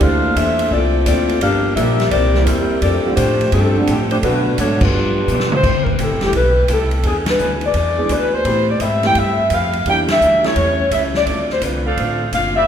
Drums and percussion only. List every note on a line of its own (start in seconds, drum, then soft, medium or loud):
0.01 kick soft
0.01 ride medium
0.36 kick soft
0.36 hi-hat pedal medium
0.36 ride medium
0.59 ride medium
0.71 kick soft
1.06 kick soft
1.06 hi-hat pedal medium
1.06 ride medium
1.29 ride medium
1.41 kick soft
1.41 ride medium
1.76 kick soft
1.76 hi-hat pedal medium
1.76 ride medium
2.00 snare soft
2.00 ride soft
2.11 kick soft
2.11 ride medium
2.34 snare soft
2.47 kick soft
2.47 hi-hat pedal medium
2.47 ride medium
2.82 kick soft
2.82 ride medium
3.17 kick soft
3.17 hi-hat pedal medium
3.17 ride medium
3.41 ride soft
3.52 kick soft
3.52 ride medium
3.87 kick soft
3.87 hi-hat pedal medium
3.87 ride medium
4.11 ride medium
4.23 kick soft
4.23 ride medium
4.58 kick soft
4.58 hi-hat pedal medium
4.58 ride medium
4.81 kick medium
4.81 crash medium
5.28 hi-hat pedal medium
5.40 snare medium
5.52 mid tom medium
5.63 kick medium
5.63 crash medium
5.86 kick medium
5.99 kick soft
5.99 hi-hat pedal medium
5.99 ride medium
6.21 snare medium
6.21 ride soft
6.33 kick soft
6.33 ride medium
6.68 kick soft
6.68 hi-hat pedal medium
6.68 ride medium
6.91 ride soft
7.03 kick soft
7.03 ride medium
7.26 snare medium
7.26 ride medium
7.39 hi-hat pedal soft
7.61 ride soft
7.74 kick soft
7.74 ride medium
8.09 kick soft
8.09 hi-hat pedal medium
8.09 ride medium
8.45 kick soft
8.45 ride medium
8.80 kick soft
8.80 hi-hat pedal soft
8.80 ride medium
9.03 snare soft
9.03 ride soft
9.15 kick soft
9.15 ride medium
9.50 kick soft
9.50 hi-hat pedal medium
9.50 ride medium
9.73 ride soft
9.86 kick soft
9.86 ride medium
10.08 snare medium
10.08 ride medium
10.21 hi-hat pedal medium
10.44 snare medium
10.44 ride soft
10.56 kick soft
10.56 ride medium
10.91 kick soft
10.91 hi-hat pedal medium
10.91 ride medium
11.14 snare medium
11.26 kick soft
11.26 ride medium
11.50 snare soft
11.62 kick soft
11.62 hi-hat pedal medium
11.62 ride medium
11.97 kick soft
11.97 ride medium
12.33 kick soft
12.33 hi-hat pedal soft
12.33 ride medium